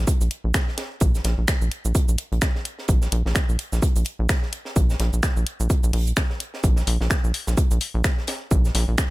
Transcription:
0.07 kick, closed hi-hat, cabasa
0.21 A#1, closed hi-hat, cabasa
0.31 closed hi-hat
0.44 A#1
0.54 finger snap, kick, snare, closed hi-hat, cabasa
0.68 snare
0.78 snare, closed hi-hat
1.00 A#1, kick, closed hi-hat, cabasa
1.15 snare, cabasa
1.24 A#1, snare, closed hi-hat
1.38 A#1
1.48 finger snap, kick, snare, closed hi-hat, cabasa
1.62 A#1, cabasa
1.71 closed hi-hat
1.85 A#1, cabasa
1.95 kick, closed hi-hat, cabasa
2.08 A#1, cabasa
2.18 closed hi-hat
2.32 A#1, closed hi-hat
2.41 finger snap, kick, snare, closed hi-hat, cabasa
2.56 snare
2.65 closed hi-hat
2.79 snare
2.88 A#1, kick, closed hi-hat, cabasa
3.02 snare, cabasa
3.12 A#1, closed hi-hat
3.26 A#1, snare
3.35 finger snap, kick, snare, closed hi-hat, cabasa
3.49 A#1, cabasa
3.59 closed hi-hat
3.73 A#1, snare, cabasa
3.82 kick, closed hi-hat, cabasa
3.96 A#1, closed hi-hat, cabasa
4.05 closed hi-hat
4.19 A#1
4.29 finger snap, kick, snare, closed hi-hat, cabasa
4.43 snare
4.52 closed hi-hat
4.65 snare
4.76 A#1, kick, closed hi-hat, cabasa
4.90 snare, cabasa
5.00 A#1, snare, closed hi-hat
5.13 A#1, cabasa
5.23 finger snap, kick, snare, closed hi-hat, cabasa
5.37 A#1, cabasa
5.46 closed hi-hat
5.60 A#1, cabasa
5.70 kick, closed hi-hat, cabasa
5.83 A#1, cabasa
5.93 A#1, closed hi-hat, open hi-hat
6.07 closed hi-hat, cabasa
6.16 finger snap, kick, snare, closed hi-hat, cabasa
6.30 snare
6.40 closed hi-hat
6.54 snare
6.64 A#1, kick, closed hi-hat, cabasa
6.76 snare, cabasa
6.87 A#1, closed hi-hat, open hi-hat
7.01 A#1, snare
7.10 finger snap, kick, snare, closed hi-hat, cabasa
7.24 A#1, cabasa
7.34 closed hi-hat, open hi-hat
7.47 A#1, snare, cabasa
7.57 kick, closed hi-hat, cabasa
7.71 A#1, closed hi-hat, cabasa
7.81 closed hi-hat, open hi-hat
7.94 A#1
8.04 finger snap, kick, snare, closed hi-hat, cabasa
8.18 snare
8.27 snare, closed hi-hat, open hi-hat
8.51 A#1, kick, closed hi-hat, cabasa
8.65 snare, cabasa
8.75 A#1, snare, closed hi-hat, open hi-hat
8.88 A#1
8.98 finger snap, kick, snare, closed hi-hat, cabasa

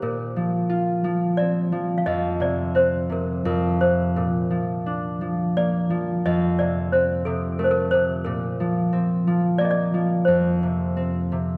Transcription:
Already playing: A#3 G4
0.02 A#2 A#4
0.36 F3
0.70 F4
1.04 F3
1.37 C4 D5
1.72 F3
1.98 F5
2.06 F2 D#5
2.40 C3 D5
2.75 C4 C5
3.10 C3 A#4
3.45 F2 A#4
3.81 C3 C5
4.16 A#2 A#4
4.50 F3
4.86 D4
5.21 F3
5.57 A#3 D5
5.90 F3
6.26 F2 D#5
6.59 C3 D5
6.92 C4 C5
7.25 C3 A4
7.59 A3 A#4
7.64 C5
7.71 A#4
7.91 C3 C5
8.25 A#2 A#4
8.60 F3
8.93 C4
9.27 F3
9.58 A#3 D5
9.65 D#5
9.71 D5
9.94 F3
10.25 F2 C5
10.63 C3
10.97 C4
11.32 C3

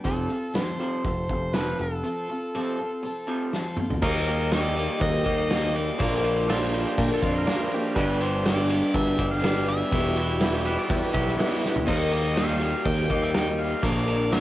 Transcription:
0.04 F1 F2 C3 F3 C4 F4 A4, kick, closed hi-hat
0.29 F2 C3 C4 F4 A4, closed hi-hat
0.54 F2 C3 F3 C4 F4 A4 C5, snare, closed hi-hat
0.78 F2 C3 F3 C4 F4 A4, closed hi-hat
1.04 F1 F2 C3 F3 C4 F4 A4 C5, kick, closed hi-hat
1.29 F1 F2 C3, kick, closed hi-hat
1.53 F2 C3 F3 C4 F4 A4 B4, snare, closed hi-hat
1.79 F1 F2 C3 C4 F4 A4, closed hi-hat
2.03 F2 C3 F3 C4 F4 A4
2.28 F2 C3 C4 F4 A4
2.54 F2 C3 F3 C4 F4 A4
2.78 F2 C3 C4 F4 A4
3.03 F2 C3 F3 C4 F4 A4
3.27 F2 C3 F3
3.53 F2 C3 F3 C4 F4 A4, snare
3.76 F2 C3 C4 F4 A4, mid tom
3.90 floor tom
4.01 D#2 D#3 G3 A#3 D#4 G4 A#4 D#5, kick, crash, tambourine
4.26 A#3 D#4 G4, ride, tambourine
4.50 D#3 G3 A#3 D#4 G4 A#4 D5 G5, snare, ride, tambourine
4.54 D#4 A#4
4.75 A#3 D#4 G4 A#4, ride, tambourine
4.99 D#2 D#3 G3 A#3 D#4 G4 A#4 C5 D#5, kick, ride
5.24 D#2 A#3 D#4 G4, kick, ride, tambourine
5.37 D#5
5.49 D#3 G3 A#3 D#4 G4 A#4 D#5, snare, ride, tambourine
5.53 A#4
5.75 A#3 D#4 A#4 D5, ride, tambourine
5.97 A#1 A#2 D3 F3 A#3 D4 F4 A#4 D5, kick, ride, tambourine
6.01 F3 A#3 D4 A#4
6.23 A#3 D4 F4, ride, tambourine
6.47 A#2 F3 A#3 D4 F4 A4 A#4 D5, snare, ride, tambourine
6.51 A#3 D4 A#4
6.62 G4
6.72 A#3 D4 F4, ride, tambourine
6.87 G4
6.98 A#2 D3 F3 A#3 D4 F4 A#4 D5, kick, ride
7.14 A4
7.22 F2 A#3 D4 F4, kick, ride, tambourine
7.38 A#4
7.46 F3 A#3 D4 F4 A#4 D5, snare, ride, tambourine
7.72 F3 A#3 D4 G4 A#4, ride, tambourine
7.95 G1 G2 D3 G3 B3 D4 D#4 G4 B4 D5, kick, tambourine, crash
8.20 G3 B3 D4 G4 C5, ride, tambourine
8.44 G2 D3 G3 B3 D4 G4 B4 D5, snare, ride, tambourine
8.69 G3 B3 D4 G4 B4, ride, tambourine
8.94 G1 G2 D3 G3 B3 D4 G4 B4 D5 E5, kick, ride
9.17 G1 G3 B3 D4 G4, kick, ride, tambourine
9.31 F5, snare
9.41 G3 B3 D4 G4 B4 F5, snare, ride, tambourine
9.66 G3 B3 D4 B4 E5, ride, tambourine
9.91 E1 E2 B2 E3 G3 B3 E4 G4 B4 E5, kick, ride, tambourine
10.16 E3 G3 E4 G4, ride, tambourine
10.39 E2 B2 E3 G3 B3 E4 G4 B4 E5, snare, ride, tambourine
10.53 G4
10.64 E3 G3 B3 E4 G4 B4, ride, tambourine
10.79 D5
10.88 E2 E3 G3 B3 E4 G4 B4 G5, kick, ride, tambourine
11.12 B1 E3 G3 E4 G4 E5, kick, ride, tambourine
11.28 snare
11.37 E3 G3 B3 E4 G4 B4 E5, snare, ride, tambourine
11.62 B3 E4 G4, snare, tambourine
11.76 floor tom
11.86 D#2 D#3 G3 A#3 D#4 G4 A#4 C5 D#5, kick, crash, tambourine
12.11 A#3 D#4 G4, ride, tambourine
12.35 D#3 G3 A#3 D#4 G4 A#4 D#5, snare, ride, tambourine
12.39 F5
12.59 A#3 D#4 G4, ride, tambourine
12.85 D#2 D#3 G3 A#3 D#4 G4 A#4 D#5 G5, kick, ride
13.10 D#2 A#3 D#4 G4, kick, ride, tambourine
13.23 D5 E5 G5
13.33 G3 A#3 D#4 G4 A#4 D#5, snare, ride, tambourine
13.59 A#3 D#4 G4 F5, ride, tambourine
13.82 A#1 A#2 D3 F3 A#3 D4 F4 A#4 D5, kick, ride, tambourine
14.07 F3 A#3 D4 A#4, ride, tambourine
14.30 A#2 D3 F3 A#3 D4 F4 A#4 C5 E5, snare, ride, tambourine

